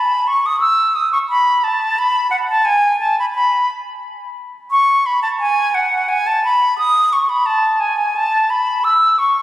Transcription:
0.00 0.29 B5 medium
0.28 0.48 C#6 medium
0.46 0.60 D#6 medium
0.61 0.97 E6 medium
0.95 1.12 D#6 medium
1.13 1.19 C#6 medium
1.30 1.65 B5 medium
1.64 2.00 A5 medium
1.99 2.30 B5 medium
2.31 2.37 F#5 medium
2.49 2.67 A5 medium
2.65 3.00 G#5 medium
3.00 3.18 A5 medium
3.20 3.26 B5 medium
3.35 3.69 B5 medium
4.71 5.08 C#6 medium
5.06 5.22 B5 medium
5.22 5.28 A5 medium
5.40 5.76 G#5 medium
5.75 6.10 F#5 medium
6.09 6.28 G#5 medium
6.27 6.43 A5 medium
6.45 6.78 B5 medium
6.78 7.14 D#6 loud
7.13 7.31 C#6 medium
7.29 7.47 B5 medium
7.46 7.82 A5 medium
7.80 8.17 G#5 medium
8.16 8.52 A5 medium
8.50 8.86 B5 medium
8.84 9.20 E6 medium
9.19 9.42 C#6 medium

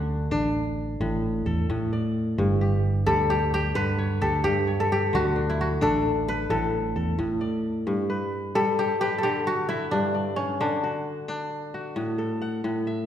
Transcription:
0.00 0.28 D2 loud
0.00 1.05 D3 medium
0.00 0.31 D4 medium
0.00 1.31 D4 medium
0.00 0.28 E4 medium
0.00 0.14 G4 medium
0.31 0.96 A1 medium
0.31 2.00 D4 medium
1.00 1.43 A1 medium
1.00 1.68 A2 medium
1.46 1.68 E2 medium
1.46 2.78 A4 medium
1.70 2.34 A2 medium
1.70 2.43 A2 medium
1.93 3.04 D5 medium
2.38 3.03 G1 medium
2.38 4.43 G2 medium
2.61 3.06 G4 medium
3.06 3.71 D2 medium
3.06 3.80 G3 medium
3.06 4.21 G4 medium
3.06 4.21 A4 loud
3.30 3.53 G4 medium
3.54 4.44 G4 loud
3.75 4.18 G2 medium
3.75 5.12 D3 medium
3.75 4.98 B4 medium
3.98 4.67 C#5 medium
4.21 4.43 D2 medium
4.21 5.62 G4 medium
4.21 4.80 A4 medium
4.44 5.18 G2 medium
4.44 5.09 G2 medium
4.44 4.92 G4 medium
4.67 5.42 C#5 medium
4.80 5.82 A4 medium
4.92 5.21 G4 medium
5.13 5.78 D2 medium
5.13 6.55 D3 medium
5.13 5.60 F#4 medium
5.36 5.81 D4 medium
5.50 7.06 E4 medium
5.61 5.67 F#4 medium
5.81 6.46 A1 medium
5.81 7.50 D4 medium
5.81 6.50 A4 medium
6.28 7.51 B4 medium
6.50 6.93 A1 medium
6.50 7.17 A2 medium
6.50 7.82 A4 medium
6.96 7.17 E2 medium
6.96 8.28 A4 medium
7.19 7.92 A2 medium
7.19 7.83 A2 medium
7.41 8.52 D5 medium
7.87 9.91 G2 medium
8.10 9.01 B4 medium
8.55 9.29 G3 medium
8.55 9.47 G4 medium
8.55 9.18 A4 loud
8.79 9.00 G4 medium
9.01 9.23 G4 loud
9.01 10.24 B4 medium
9.18 10.50 A4 medium
9.23 10.59 D3 medium
9.23 9.53 G4 medium
9.47 10.93 F#4 medium
9.47 10.90 G4 medium
9.69 11.25 E4 medium
9.69 10.73 E5 medium
9.91 10.66 G2 medium
9.91 10.42 D4 medium
10.14 11.25 D5 medium
10.36 10.67 C#4 medium
10.60 12.01 D3 medium
10.60 12.29 D4 medium
10.84 11.74 F#4 medium
11.29 12.97 D4 medium
11.74 13.06 F#4 medium
11.96 12.63 A2 medium
12.18 13.06 A4 medium
12.42 13.06 F#5 medium
12.64 13.06 A2 medium
12.87 13.06 E5 medium

